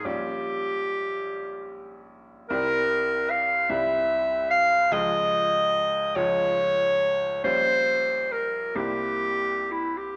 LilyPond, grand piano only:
\new Staff \with { instrumentName = "Grand piano" } { \clef bass \time 6/8 \key c \phrygian \tempo 4. = 48 <bes,, g des' f'>2. | <c, g c' e'>4. <c, g c' e'>4. | <des, f aes f'>4. <des, f aes f'>4. | <bes,, g des' f'>4. <c, bes c' e'>4. | }